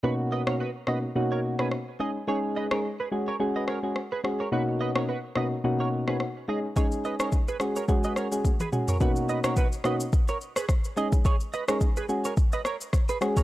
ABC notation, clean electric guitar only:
X:1
M:4/4
L:1/16
Q:"Swing 16ths" 1/4=107
K:B
V:1 name="Clean electric guitar"
[FB] z [Bd] [Ac] [FB] z [Bd] z2 [Ac] z [GB] z2 [Gd] z | [Gc] z [Bd] [Ac] z [GB] z [Ac] z [Bd] [Ac] z2 [GB] z [Ac] | [FB] z [Bd] [Ac] [FB] z [Bd] z2 [Ac] z [GB] z2 [Gd] z | [Gc] z [Bd] [Ac] z [GB] z [Ac] z [Bd] [Ac] z2 [GB] z [Ac] |
[FB] z [Bd] [Ac] [FB] z [Bd] z2 [Ac] z [GB] z2 [Gd] z | [Gc] z [Bd] [Ac] z [GB] z [Ac] z [Bd] [Ac] z2 [GB] z [Ac] |]